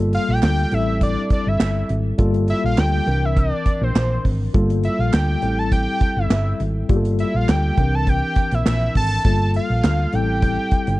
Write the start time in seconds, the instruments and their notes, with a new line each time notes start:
Already playing: fingered electric bass G1, tine electric piano G3 A#3 F4 A4
0.13 analog synth lead F5, closed hi-hat
0.29 fingered electric bass A#1, analog synth lead G5
0.42 fingered electric bass D2, snare, clap, closed hi-hat
0.44 analog synth lead G5, clap
0.71 fingered electric bass A1, tine electric piano G3 C4 E4 A4, analog synth lead E5, closed hi-hat
1.01 analog synth lead D5, kick, closed hi-hat
1.30 analog synth lead D5, kick, closed hi-hat
1.47 fingered electric bass G1, analog synth lead E5
1.60 fingered electric bass G1, snare, clap, closed hi-hat
1.89 fingered electric bass G#1, closed hi-hat
2.18 fingered electric bass G1, tine electric piano G3 A#3 F4 A4, kick, closed hi-hat
2.34 closed hi-hat
2.48 analog synth lead E5, closed hi-hat
2.64 fingered electric bass A#1, analog synth lead F5
2.78 fingered electric bass D2, snare, clap, closed hi-hat
2.79 analog synth lead G5, clap
3.06 fingered electric bass C2, tine electric piano E3 C4 D4 A#4, closed hi-hat
3.25 analog synth lead E5
3.37 analog synth lead D5, kick, closed hi-hat
3.66 kick, closed hi-hat
3.81 fingered electric bass A#1, analog synth lead C5
3.95 fingered electric bass A#1, snare, clap, closed hi-hat
4.25 fingered electric bass G#1, kick, open hi-hat
4.54 fingered electric bass G1, tine electric piano G3 A#3 F4 A4, kick, closed hi-hat
4.70 closed hi-hat
4.83 analog synth lead E5, closed hi-hat
4.99 fingered electric bass A#1, analog synth lead F5
5.13 fingered electric bass D2, analog synth lead G5, snare, clap, closed hi-hat
5.15 clap
5.42 fingered electric bass A1, tine electric piano G3 C4 E4 A4, closed hi-hat
5.59 analog synth lead A5
5.72 analog synth lead G5, kick, closed hi-hat
6.01 kick, closed hi-hat
6.17 fingered electric bass G1, analog synth lead E5
6.30 fingered electric bass G1, snare, clap, closed hi-hat
6.60 fingered electric bass G#1, closed hi-hat
6.89 fingered electric bass G1, tine electric piano G3 A#3 F4 G4, kick, closed hi-hat
6.96 tine electric piano A4
7.05 closed hi-hat
7.19 analog synth lead E5, closed hi-hat
7.34 fingered electric bass A#1, analog synth lead F5
7.48 fingered electric bass D2, analog synth lead G5, snare, clap, closed hi-hat
7.77 fingered electric bass C2, tine electric piano E3 C4 D4 A#4, kick, closed hi-hat
7.95 analog synth lead A5
8.07 analog synth lead G5, kick, closed hi-hat
8.36 kick, closed hi-hat
8.51 fingered electric bass A#1, analog synth lead E5, closed hi-hat
8.66 fingered electric bass A#1, analog synth lead E5, snare, clap, closed hi-hat
8.95 fingered electric bass G#1, analog synth lead A5, kick, closed hi-hat
9.24 fingered electric bass G1, tine electric piano G3 A#3 F4 A4, kick, closed hi-hat
9.54 analog synth lead F5, closed hi-hat
9.70 fingered electric bass A#1
9.83 fingered electric bass D2, snare, clap, closed hi-hat
10.12 fingered electric bass A1, tine electric piano G3 C4 E4 A4, analog synth lead G5, closed hi-hat
10.42 kick, closed hi-hat
10.71 kick, closed hi-hat
10.87 fingered electric bass G1, closed hi-hat